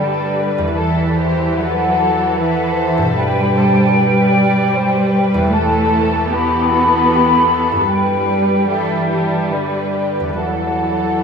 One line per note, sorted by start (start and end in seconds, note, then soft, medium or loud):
0.00 0.70 G2 soft
0.00 0.77 D3 medium
0.00 0.72 G3 soft
0.00 2.13 A3 soft
0.00 0.36 A4 soft
0.00 0.66 A4 soft
0.00 0.75 B4 soft
0.00 0.76 D5 medium
0.00 2.22 D5 soft
0.36 0.76 B4 medium
0.58 3.10 E2 soft
0.67 3.05 A4 soft
0.76 3.12 E3 medium
0.76 1.56 E3 medium
0.76 1.16 A4 soft
0.76 1.16 A4 medium
0.76 1.57 E5 medium
1.17 1.57 G4 soft
1.17 1.56 C5 medium
1.56 2.37 F#3 medium
1.56 2.38 A4 soft
1.56 1.97 B4 soft
1.56 2.37 F#5 medium
1.98 2.36 A4 soft
2.36 3.16 E3 medium
2.36 3.14 A4 medium
2.36 2.76 B4 medium
2.36 3.14 E5 medium
2.77 3.16 C5 medium
2.98 5.46 G2 soft
3.02 6.92 B2 soft
3.02 5.42 A4 soft
3.11 7.01 B5 soft
3.15 5.47 G3 medium
3.15 5.48 G3 medium
3.15 3.54 B4 medium
3.15 3.56 B4 medium
3.15 5.29 G5 medium
3.55 3.94 A4 soft
3.55 3.95 C5 medium
3.94 4.33 B4 medium
3.94 4.73 B4 medium
4.34 4.73 D5 medium
4.74 5.51 B4 soft
4.74 5.13 C5 medium
5.13 5.52 B4 medium
5.34 7.85 E2 soft
5.38 7.75 B3 soft
5.43 7.80 A4 soft
5.48 7.84 B4 soft
5.48 6.30 A5 medium
5.52 7.87 E3 medium
5.52 6.31 A3 medium
5.52 6.31 A4 medium
5.52 6.32 A4 soft
6.30 7.90 B3 medium
6.30 6.70 G4 medium
6.30 7.88 B5 medium
6.70 7.11 F#4 medium
6.70 7.88 A4 medium
7.12 7.51 G4 soft
7.53 7.91 A4 soft
7.72 10.33 G2 soft
7.76 10.23 B3 soft
7.81 10.28 A4 soft
7.85 10.32 B4 soft
7.89 8.69 G3 medium
7.89 10.39 G3 medium
7.89 8.68 B4 soft
7.89 8.71 B4 medium
7.89 8.68 G5 medium
8.68 9.51 E3 medium
8.68 9.11 G4 soft
8.68 9.09 A4 soft
8.68 9.52 E5 medium
9.10 9.51 G4 soft
9.10 9.51 A4 soft
9.52 10.38 D3 soft
9.52 10.38 B4 soft
9.52 9.95 B4 soft
9.52 10.38 D5 soft
9.95 10.38 G4 soft
10.20 11.23 E2 soft
10.24 11.23 B3 soft
10.29 11.23 A4 soft
10.33 11.23 B4 soft
10.37 11.23 E3 soft
10.37 11.23 F#3 soft
10.37 11.23 A4 soft
10.37 11.23 F#5 medium